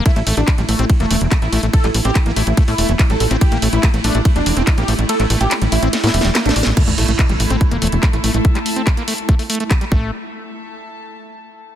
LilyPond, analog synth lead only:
\new Staff \with { instrumentName = "Analog synth lead" } { \time 4/4 \key c \mixolydian \tempo 4 = 143 e'16 r8 d'16 r8 a16 r8 a8 r8 e'16 r8 | a'16 r8 g'16 r8 e'16 r8 e'8 r8 a'16 r8 | g'16 r8 e'16 r8 d'16 r8 d'8 r8 g'16 r8 | a'16 r8 g'16 r8 e'16 r8 e'8 r8 d'16 r8 |
r1 | r1 | r1 | }